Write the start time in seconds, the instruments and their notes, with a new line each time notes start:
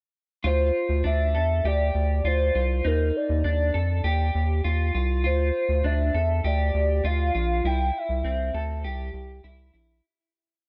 0.44 analog synth bass D2, clean electric guitar F4, soft synth lead C5
0.89 analog synth bass D2
1.04 analog synth bass D2, clean electric guitar D4, soft synth lead E5
1.35 analog synth bass E2, clean electric guitar A4
1.64 analog synth bass D2, clean electric guitar G4, soft synth lead D5
1.95 analog synth bass D2
2.24 analog synth bass D2, clean electric guitar F4, soft synth lead C5
2.55 analog synth bass C2, clean electric guitar F4
2.85 analog synth bass D#2, clean electric guitar D#4, soft synth lead A#4
3.17 soft synth lead D5
3.29 analog synth bass D#2
3.44 analog synth bass D#2, clean electric guitar D4
3.74 analog synth bass F2, clean electric guitar A4
4.04 analog synth bass D#2, clean electric guitar G4
4.35 analog synth bass D#2
4.64 analog synth bass D#2, clean electric guitar F4
4.95 analog synth bass C2, clean electric guitar F4
5.24 analog synth bass D2, clean electric guitar F4, soft synth lead C5
5.69 analog synth bass D2
5.84 analog synth bass D2, clean electric guitar D4, soft synth lead E5
6.14 analog synth bass E2, clean electric guitar A4
6.44 analog synth bass D2, clean electric guitar G4, soft synth lead D5
6.74 analog synth bass D2
7.04 analog synth bass D2, clean electric guitar F4, soft synth lead F5
7.35 analog synth bass A#1, clean electric guitar F4
7.64 analog synth bass C2, clean electric guitar E4, soft synth lead G5
7.98 soft synth lead E5
8.09 analog synth bass C2
8.24 analog synth bass C2, clean electric guitar C4
8.54 analog synth bass D2, clean electric guitar A4
8.84 analog synth bass C2, clean electric guitar G4
9.13 analog synth bass C2
9.44 analog synth bass C2, clean electric guitar E4
9.74 analog synth bass A#1, clean electric guitar E4